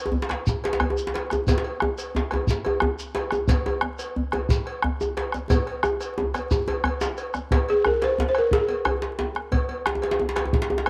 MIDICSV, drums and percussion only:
0, 0, Header, 1, 5, 480
1, 0, Start_track
1, 0, Key_signature, -4, "major"
1, 0, Tempo, 335570
1, 2108, Time_signature, 12, 3, 24, 8
1, 15587, End_track
2, 0, Start_track
2, 0, Title_t, "Bombo"
2, 429, Note_on_c, 9, 37, 68
2, 572, Note_off_c, 9, 37, 0
2, 671, Note_on_c, 9, 43, 81
2, 814, Note_off_c, 9, 43, 0
2, 921, Note_on_c, 9, 37, 27
2, 1064, Note_off_c, 9, 37, 0
2, 1142, Note_on_c, 9, 37, 83
2, 1286, Note_off_c, 9, 37, 0
2, 1863, Note_on_c, 9, 37, 65
2, 2006, Note_off_c, 9, 37, 0
2, 2100, Note_on_c, 9, 43, 77
2, 2243, Note_off_c, 9, 43, 0
2, 2580, Note_on_c, 9, 37, 84
2, 2723, Note_off_c, 9, 37, 0
2, 3302, Note_on_c, 9, 37, 63
2, 3445, Note_off_c, 9, 37, 0
2, 3536, Note_on_c, 9, 43, 89
2, 3679, Note_off_c, 9, 43, 0
2, 3785, Note_on_c, 9, 37, 27
2, 3928, Note_off_c, 9, 37, 0
2, 4010, Note_on_c, 9, 37, 95
2, 4153, Note_off_c, 9, 37, 0
2, 4728, Note_on_c, 9, 37, 78
2, 4871, Note_off_c, 9, 37, 0
2, 4971, Note_on_c, 9, 43, 90
2, 5114, Note_off_c, 9, 43, 0
2, 5453, Note_on_c, 9, 37, 96
2, 5596, Note_off_c, 9, 37, 0
2, 6181, Note_on_c, 9, 37, 76
2, 6324, Note_off_c, 9, 37, 0
2, 6418, Note_on_c, 9, 43, 93
2, 6561, Note_off_c, 9, 43, 0
2, 6662, Note_on_c, 9, 37, 30
2, 6805, Note_off_c, 9, 37, 0
2, 6900, Note_on_c, 9, 37, 100
2, 7043, Note_off_c, 9, 37, 0
2, 7616, Note_on_c, 9, 37, 83
2, 7759, Note_off_c, 9, 37, 0
2, 7865, Note_on_c, 9, 43, 97
2, 8009, Note_off_c, 9, 43, 0
2, 8108, Note_on_c, 9, 37, 31
2, 8251, Note_off_c, 9, 37, 0
2, 8339, Note_on_c, 9, 37, 97
2, 8482, Note_off_c, 9, 37, 0
2, 8592, Note_on_c, 9, 37, 29
2, 8735, Note_off_c, 9, 37, 0
2, 9075, Note_on_c, 9, 37, 73
2, 9218, Note_off_c, 9, 37, 0
2, 9309, Note_on_c, 9, 37, 29
2, 9309, Note_on_c, 9, 43, 92
2, 9452, Note_off_c, 9, 37, 0
2, 9452, Note_off_c, 9, 43, 0
2, 9551, Note_on_c, 9, 37, 27
2, 9694, Note_off_c, 9, 37, 0
2, 9780, Note_on_c, 9, 37, 92
2, 9923, Note_off_c, 9, 37, 0
2, 10497, Note_on_c, 9, 37, 72
2, 10640, Note_off_c, 9, 37, 0
2, 10740, Note_on_c, 9, 43, 85
2, 10883, Note_off_c, 9, 43, 0
2, 11221, Note_on_c, 9, 37, 88
2, 11364, Note_off_c, 9, 37, 0
2, 11470, Note_on_c, 9, 37, 26
2, 11613, Note_off_c, 9, 37, 0
2, 11938, Note_on_c, 9, 37, 68
2, 12081, Note_off_c, 9, 37, 0
2, 12177, Note_on_c, 9, 43, 91
2, 12320, Note_off_c, 9, 43, 0
2, 12664, Note_on_c, 9, 37, 101
2, 12807, Note_off_c, 9, 37, 0
2, 13390, Note_on_c, 9, 37, 74
2, 13533, Note_off_c, 9, 37, 0
2, 13628, Note_on_c, 9, 43, 87
2, 13771, Note_off_c, 9, 43, 0
2, 14098, Note_on_c, 9, 37, 95
2, 14241, Note_off_c, 9, 37, 0
2, 14342, Note_on_c, 9, 37, 32
2, 14485, Note_off_c, 9, 37, 0
2, 14820, Note_on_c, 9, 37, 73
2, 14963, Note_off_c, 9, 37, 0
2, 15060, Note_on_c, 9, 43, 97
2, 15203, Note_off_c, 9, 43, 0
2, 15535, Note_on_c, 9, 37, 92
2, 15587, Note_off_c, 9, 37, 0
2, 15587, End_track
3, 0, Start_track
3, 0, Title_t, "Djembe"
3, 81, Note_on_c, 9, 63, 73
3, 170, Note_on_c, 9, 64, 79
3, 224, Note_off_c, 9, 63, 0
3, 313, Note_off_c, 9, 64, 0
3, 320, Note_on_c, 9, 62, 81
3, 421, Note_off_c, 9, 62, 0
3, 421, Note_on_c, 9, 62, 58
3, 421, Note_on_c, 9, 63, 59
3, 442, Note_off_c, 9, 62, 0
3, 442, Note_on_c, 9, 62, 78
3, 564, Note_off_c, 9, 63, 0
3, 585, Note_off_c, 9, 62, 0
3, 701, Note_on_c, 9, 63, 72
3, 844, Note_off_c, 9, 63, 0
3, 931, Note_on_c, 9, 62, 78
3, 1043, Note_off_c, 9, 62, 0
3, 1043, Note_on_c, 9, 62, 80
3, 1149, Note_on_c, 9, 63, 76
3, 1149, Note_on_c, 9, 64, 70
3, 1186, Note_off_c, 9, 62, 0
3, 1289, Note_off_c, 9, 63, 0
3, 1289, Note_on_c, 9, 63, 76
3, 1292, Note_off_c, 9, 64, 0
3, 1432, Note_off_c, 9, 63, 0
3, 1531, Note_on_c, 9, 62, 76
3, 1641, Note_off_c, 9, 62, 0
3, 1641, Note_on_c, 9, 62, 23
3, 1650, Note_off_c, 9, 62, 0
3, 1650, Note_on_c, 9, 62, 81
3, 1793, Note_off_c, 9, 62, 0
3, 1878, Note_on_c, 9, 62, 64
3, 1878, Note_on_c, 9, 63, 61
3, 1898, Note_off_c, 9, 63, 0
3, 1898, Note_on_c, 9, 63, 82
3, 2021, Note_off_c, 9, 62, 0
3, 2041, Note_off_c, 9, 63, 0
3, 2120, Note_on_c, 9, 64, 77
3, 2131, Note_on_c, 9, 62, 77
3, 2256, Note_off_c, 9, 62, 0
3, 2256, Note_on_c, 9, 62, 79
3, 2263, Note_off_c, 9, 64, 0
3, 2365, Note_off_c, 9, 62, 0
3, 2365, Note_on_c, 9, 62, 25
3, 2508, Note_off_c, 9, 62, 0
3, 2605, Note_on_c, 9, 63, 90
3, 2606, Note_off_c, 9, 63, 0
3, 2606, Note_on_c, 9, 63, 76
3, 2749, Note_off_c, 9, 63, 0
3, 3073, Note_on_c, 9, 64, 75
3, 3094, Note_on_c, 9, 62, 82
3, 3216, Note_off_c, 9, 64, 0
3, 3237, Note_off_c, 9, 62, 0
3, 3321, Note_on_c, 9, 62, 59
3, 3321, Note_on_c, 9, 63, 56
3, 3342, Note_off_c, 9, 63, 0
3, 3342, Note_on_c, 9, 63, 82
3, 3464, Note_off_c, 9, 62, 0
3, 3485, Note_off_c, 9, 63, 0
3, 3584, Note_on_c, 9, 62, 75
3, 3727, Note_off_c, 9, 62, 0
3, 3809, Note_on_c, 9, 63, 73
3, 3952, Note_off_c, 9, 63, 0
3, 4032, Note_on_c, 9, 63, 99
3, 4032, Note_on_c, 9, 64, 71
3, 4175, Note_off_c, 9, 63, 0
3, 4175, Note_off_c, 9, 64, 0
3, 4500, Note_on_c, 9, 62, 79
3, 4517, Note_off_c, 9, 62, 0
3, 4517, Note_on_c, 9, 62, 22
3, 4661, Note_off_c, 9, 62, 0
3, 4746, Note_on_c, 9, 62, 62
3, 4746, Note_on_c, 9, 63, 61
3, 4754, Note_off_c, 9, 63, 0
3, 4754, Note_on_c, 9, 63, 78
3, 4889, Note_off_c, 9, 62, 0
3, 4897, Note_off_c, 9, 63, 0
3, 4993, Note_on_c, 9, 62, 78
3, 4993, Note_on_c, 9, 64, 79
3, 5136, Note_off_c, 9, 62, 0
3, 5136, Note_off_c, 9, 64, 0
3, 5230, Note_on_c, 9, 62, 23
3, 5239, Note_on_c, 9, 63, 81
3, 5373, Note_off_c, 9, 62, 0
3, 5382, Note_off_c, 9, 63, 0
3, 5469, Note_on_c, 9, 63, 76
3, 5612, Note_off_c, 9, 63, 0
3, 5956, Note_on_c, 9, 64, 79
3, 6099, Note_off_c, 9, 64, 0
3, 6193, Note_on_c, 9, 63, 73
3, 6203, Note_off_c, 9, 63, 0
3, 6203, Note_on_c, 9, 62, 58
3, 6203, Note_on_c, 9, 63, 58
3, 6346, Note_off_c, 9, 62, 0
3, 6346, Note_off_c, 9, 63, 0
3, 6438, Note_on_c, 9, 62, 74
3, 6581, Note_off_c, 9, 62, 0
3, 6924, Note_on_c, 9, 63, 73
3, 6924, Note_on_c, 9, 64, 83
3, 7067, Note_off_c, 9, 63, 0
3, 7067, Note_off_c, 9, 64, 0
3, 7164, Note_on_c, 9, 63, 80
3, 7307, Note_off_c, 9, 63, 0
3, 7400, Note_on_c, 9, 62, 81
3, 7543, Note_off_c, 9, 62, 0
3, 7643, Note_on_c, 9, 62, 67
3, 7643, Note_on_c, 9, 63, 65
3, 7786, Note_off_c, 9, 62, 0
3, 7786, Note_off_c, 9, 63, 0
3, 7875, Note_on_c, 9, 63, 97
3, 7879, Note_on_c, 9, 64, 84
3, 8018, Note_off_c, 9, 63, 0
3, 8022, Note_off_c, 9, 64, 0
3, 8118, Note_on_c, 9, 62, 26
3, 8261, Note_off_c, 9, 62, 0
3, 8348, Note_on_c, 9, 63, 99
3, 8362, Note_on_c, 9, 62, 26
3, 8491, Note_off_c, 9, 63, 0
3, 8505, Note_off_c, 9, 62, 0
3, 8835, Note_on_c, 9, 63, 105
3, 8847, Note_on_c, 9, 62, 24
3, 8847, Note_on_c, 9, 64, 75
3, 8978, Note_off_c, 9, 63, 0
3, 8990, Note_off_c, 9, 62, 0
3, 8990, Note_off_c, 9, 64, 0
3, 9082, Note_on_c, 9, 62, 61
3, 9082, Note_on_c, 9, 63, 59
3, 9226, Note_off_c, 9, 62, 0
3, 9226, Note_off_c, 9, 63, 0
3, 9317, Note_on_c, 9, 63, 96
3, 9460, Note_off_c, 9, 63, 0
3, 9549, Note_on_c, 9, 63, 96
3, 9692, Note_off_c, 9, 63, 0
3, 9781, Note_on_c, 9, 62, 20
3, 9781, Note_on_c, 9, 63, 74
3, 9781, Note_on_c, 9, 64, 71
3, 9924, Note_off_c, 9, 62, 0
3, 9924, Note_off_c, 9, 63, 0
3, 9924, Note_off_c, 9, 64, 0
3, 10029, Note_on_c, 9, 62, 104
3, 10033, Note_off_c, 9, 62, 0
3, 10033, Note_on_c, 9, 62, 23
3, 10176, Note_off_c, 9, 62, 0
3, 10507, Note_on_c, 9, 62, 53
3, 10507, Note_on_c, 9, 63, 56
3, 10650, Note_off_c, 9, 62, 0
3, 10650, Note_off_c, 9, 63, 0
3, 10755, Note_on_c, 9, 62, 90
3, 10759, Note_on_c, 9, 64, 67
3, 10899, Note_off_c, 9, 62, 0
3, 10902, Note_off_c, 9, 64, 0
3, 10998, Note_on_c, 9, 63, 46
3, 11141, Note_off_c, 9, 63, 0
3, 11236, Note_on_c, 9, 64, 66
3, 11379, Note_off_c, 9, 64, 0
3, 11473, Note_on_c, 9, 62, 70
3, 11616, Note_off_c, 9, 62, 0
3, 11706, Note_on_c, 9, 63, 64
3, 11706, Note_on_c, 9, 64, 63
3, 11727, Note_on_c, 9, 62, 77
3, 11849, Note_off_c, 9, 63, 0
3, 11849, Note_off_c, 9, 64, 0
3, 11870, Note_off_c, 9, 62, 0
3, 12201, Note_on_c, 9, 62, 97
3, 12345, Note_off_c, 9, 62, 0
3, 12423, Note_on_c, 9, 63, 50
3, 12566, Note_off_c, 9, 63, 0
3, 12665, Note_on_c, 9, 62, 20
3, 12671, Note_on_c, 9, 64, 74
3, 12808, Note_off_c, 9, 62, 0
3, 12814, Note_off_c, 9, 64, 0
3, 12904, Note_on_c, 9, 62, 73
3, 13047, Note_off_c, 9, 62, 0
3, 13142, Note_on_c, 9, 62, 78
3, 13146, Note_on_c, 9, 63, 59
3, 13285, Note_off_c, 9, 62, 0
3, 13289, Note_off_c, 9, 63, 0
3, 13373, Note_on_c, 9, 62, 51
3, 13516, Note_off_c, 9, 62, 0
3, 13611, Note_on_c, 9, 64, 62
3, 13754, Note_off_c, 9, 64, 0
3, 13861, Note_on_c, 9, 63, 49
3, 14004, Note_off_c, 9, 63, 0
3, 14110, Note_on_c, 9, 62, 88
3, 14235, Note_on_c, 9, 63, 68
3, 14254, Note_off_c, 9, 62, 0
3, 14352, Note_on_c, 9, 62, 68
3, 14378, Note_off_c, 9, 63, 0
3, 14464, Note_off_c, 9, 62, 0
3, 14464, Note_on_c, 9, 62, 99
3, 14580, Note_on_c, 9, 63, 75
3, 14587, Note_off_c, 9, 63, 0
3, 14587, Note_on_c, 9, 63, 62
3, 14607, Note_off_c, 9, 62, 0
3, 14715, Note_on_c, 9, 62, 77
3, 14730, Note_off_c, 9, 63, 0
3, 14825, Note_off_c, 9, 62, 0
3, 14825, Note_on_c, 9, 62, 98
3, 14842, Note_off_c, 9, 62, 0
3, 14842, Note_on_c, 9, 62, 50
3, 14953, Note_on_c, 9, 63, 74
3, 14985, Note_off_c, 9, 62, 0
3, 15071, Note_on_c, 9, 62, 69
3, 15096, Note_off_c, 9, 63, 0
3, 15189, Note_off_c, 9, 62, 0
3, 15189, Note_on_c, 9, 62, 94
3, 15307, Note_on_c, 9, 63, 77
3, 15313, Note_off_c, 9, 63, 0
3, 15313, Note_on_c, 9, 63, 52
3, 15332, Note_off_c, 9, 62, 0
3, 15418, Note_on_c, 9, 62, 76
3, 15456, Note_off_c, 9, 63, 0
3, 15561, Note_off_c, 9, 62, 0
3, 15587, End_track
4, 0, Start_track
4, 0, Title_t, "Shekere"
4, 672, Note_on_c, 9, 82, 54
4, 815, Note_off_c, 9, 82, 0
4, 1393, Note_on_c, 9, 82, 47
4, 1536, Note_off_c, 9, 82, 0
4, 1878, Note_on_c, 9, 82, 18
4, 2021, Note_off_c, 9, 82, 0
4, 2116, Note_on_c, 9, 82, 61
4, 2259, Note_off_c, 9, 82, 0
4, 2837, Note_on_c, 9, 82, 45
4, 2980, Note_off_c, 9, 82, 0
4, 3553, Note_on_c, 9, 82, 56
4, 3696, Note_off_c, 9, 82, 0
4, 4279, Note_on_c, 9, 82, 43
4, 4422, Note_off_c, 9, 82, 0
4, 4759, Note_on_c, 9, 82, 17
4, 4902, Note_off_c, 9, 82, 0
4, 4988, Note_on_c, 9, 82, 55
4, 5131, Note_off_c, 9, 82, 0
4, 5709, Note_on_c, 9, 82, 41
4, 5852, Note_off_c, 9, 82, 0
4, 6442, Note_on_c, 9, 82, 53
4, 6585, Note_off_c, 9, 82, 0
4, 7165, Note_on_c, 9, 82, 40
4, 7308, Note_off_c, 9, 82, 0
4, 7638, Note_on_c, 9, 82, 16
4, 7781, Note_off_c, 9, 82, 0
4, 7876, Note_on_c, 9, 82, 51
4, 8019, Note_off_c, 9, 82, 0
4, 8357, Note_on_c, 9, 82, 18
4, 8500, Note_off_c, 9, 82, 0
4, 8598, Note_on_c, 9, 82, 41
4, 8741, Note_off_c, 9, 82, 0
4, 9084, Note_on_c, 9, 82, 18
4, 9228, Note_off_c, 9, 82, 0
4, 9315, Note_on_c, 9, 82, 51
4, 9458, Note_off_c, 9, 82, 0
4, 10027, Note_on_c, 9, 82, 42
4, 10170, Note_off_c, 9, 82, 0
4, 10262, Note_on_c, 9, 82, 18
4, 10405, Note_off_c, 9, 82, 0
4, 10500, Note_on_c, 9, 82, 18
4, 10643, Note_off_c, 9, 82, 0
4, 15587, End_track
5, 0, Start_track
5, 0, Title_t, "Drums"
5, 418, Note_on_c, 9, 56, 44
5, 561, Note_off_c, 9, 56, 0
5, 912, Note_on_c, 9, 56, 42
5, 1055, Note_off_c, 9, 56, 0
5, 1145, Note_on_c, 9, 56, 42
5, 1288, Note_off_c, 9, 56, 0
5, 1633, Note_on_c, 9, 56, 41
5, 1776, Note_off_c, 9, 56, 0
5, 2117, Note_on_c, 9, 56, 51
5, 2260, Note_off_c, 9, 56, 0
5, 2352, Note_on_c, 9, 56, 44
5, 2495, Note_off_c, 9, 56, 0
5, 2837, Note_on_c, 9, 56, 42
5, 2981, Note_off_c, 9, 56, 0
5, 3305, Note_on_c, 9, 56, 41
5, 3448, Note_off_c, 9, 56, 0
5, 3785, Note_on_c, 9, 56, 43
5, 3928, Note_off_c, 9, 56, 0
5, 4509, Note_on_c, 9, 56, 44
5, 4652, Note_off_c, 9, 56, 0
5, 4989, Note_on_c, 9, 56, 52
5, 5132, Note_off_c, 9, 56, 0
5, 5235, Note_on_c, 9, 56, 44
5, 5378, Note_off_c, 9, 56, 0
5, 5709, Note_on_c, 9, 56, 45
5, 5852, Note_off_c, 9, 56, 0
5, 6189, Note_on_c, 9, 56, 44
5, 6332, Note_off_c, 9, 56, 0
5, 6675, Note_on_c, 9, 56, 45
5, 6818, Note_off_c, 9, 56, 0
5, 7394, Note_on_c, 9, 56, 48
5, 7537, Note_off_c, 9, 56, 0
5, 7869, Note_on_c, 9, 56, 64
5, 8012, Note_off_c, 9, 56, 0
5, 8112, Note_on_c, 9, 56, 50
5, 8255, Note_off_c, 9, 56, 0
5, 8590, Note_on_c, 9, 56, 48
5, 8733, Note_off_c, 9, 56, 0
5, 9071, Note_on_c, 9, 56, 46
5, 9214, Note_off_c, 9, 56, 0
5, 9557, Note_on_c, 9, 56, 52
5, 9700, Note_off_c, 9, 56, 0
5, 9801, Note_on_c, 9, 56, 51
5, 9944, Note_off_c, 9, 56, 0
5, 10267, Note_on_c, 9, 56, 47
5, 10410, Note_off_c, 9, 56, 0
5, 10753, Note_on_c, 9, 56, 55
5, 10896, Note_off_c, 9, 56, 0
5, 10993, Note_on_c, 9, 56, 47
5, 11136, Note_off_c, 9, 56, 0
5, 11465, Note_on_c, 9, 56, 44
5, 11608, Note_off_c, 9, 56, 0
5, 11944, Note_on_c, 9, 56, 45
5, 12087, Note_off_c, 9, 56, 0
5, 12424, Note_on_c, 9, 56, 46
5, 12568, Note_off_c, 9, 56, 0
5, 12659, Note_on_c, 9, 56, 50
5, 12802, Note_off_c, 9, 56, 0
5, 13617, Note_on_c, 9, 56, 61
5, 13760, Note_off_c, 9, 56, 0
5, 13858, Note_on_c, 9, 56, 46
5, 14001, Note_off_c, 9, 56, 0
5, 14333, Note_on_c, 9, 56, 45
5, 14476, Note_off_c, 9, 56, 0
5, 14814, Note_on_c, 9, 56, 48
5, 14957, Note_off_c, 9, 56, 0
5, 15544, Note_on_c, 9, 56, 47
5, 15587, Note_off_c, 9, 56, 0
5, 15587, End_track
0, 0, End_of_file